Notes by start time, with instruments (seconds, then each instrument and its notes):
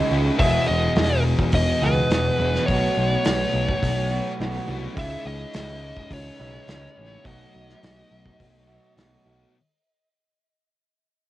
Already playing: clean electric guitar C#3 E3 G#3 D#4 E4, string machine G#4 C#5 C#6 D#6
0.10 picked electric bass C#2, distorted electric guitar C#3 G#3 C#4
0.37 picked electric bass E1, clean electric guitar E2 B2 G#3 B3 G#4, distorted electric guitar E2 B2 E3, lead electric guitar E5, kick, open hi-hat
0.68 picked electric bass E1, lead electric guitar D#5
0.95 picked electric bass E1, snare, open hi-hat
1.39 kick
1.52 picked electric bass E1, lead electric guitar D#5, kick, open hi-hat
1.82 picked electric bass C#2, clean electric guitar E2 B2 D#3 G#3 B3 G#4, lead electric guitar B4
2.10 picked electric bass E1, clean electric guitar E2 B2 G#3 B3 G#4, snare, open hi-hat
2.39 picked electric bass E1, distorted electric guitar E2 B2 E3
2.55 snare
2.66 picked electric bass B1, distorted electric guitar B2 F#3, clean electric guitar B2 E3 A3, lead electric guitar C#5, kick, open hi-hat
2.70 distorted electric guitar B3, clean electric guitar B3 F#4
2.97 picked electric bass B1
3.25 picked electric bass B1, snare, open hi-hat
3.54 picked electric bass B1
3.68 kick
3.82 picked electric bass B1, kick, open hi-hat
4.11 clean electric guitar B2 E3 A3 B3 F#4
4.38 picked electric bass B1, clean electric guitar B2 E3 A3 B3 F#4, snare, open hi-hat
4.67 picked electric bass C2, distorted electric guitar B2 F#3 B3
4.95 picked electric bass C#2, distorted electric guitar C#3 G#3 C#4, clean electric guitar C#3 E3 G#3 D#4 E4, kick, open hi-hat
4.99 lead electric guitar E5
5.26 picked electric bass C#2, lead electric guitar D#5
5.54 picked electric bass C#2, snare, open hi-hat
5.97 kick
6.10 picked electric bass C#2, lead electric guitar C#5, kick, open hi-hat
6.40 picked electric bass B1, clean electric guitar C#3 E3 G#3 D#4 E4
6.68 picked electric bass C#2, clean electric guitar C#3 E3 G#3 D#4 E4, snare, open hi-hat
6.95 picked electric bass A1, distorted electric guitar C#3 G#3 C#4
7.23 picked electric bass B1, clean electric guitar B2 F#3 A3 D#4 F#4, distorted electric guitar B2 F#3, lead electric guitar D#5, kick, open hi-hat
7.28 distorted electric guitar B3
7.55 picked electric bass B1
7.69 snare
7.83 picked electric bass B1, snare, open hi-hat
8.11 picked electric bass B1
8.26 kick
8.40 picked electric bass B1, kick, open hi-hat
8.67 clean electric guitar B2 F#3 A3 D#4 F#4
8.96 picked electric bass B1, clean electric guitar B2 F#3 A3 D#4 F#4, snare, open hi-hat
9.25 picked electric bass B1, distorted electric guitar B2 F#3 B3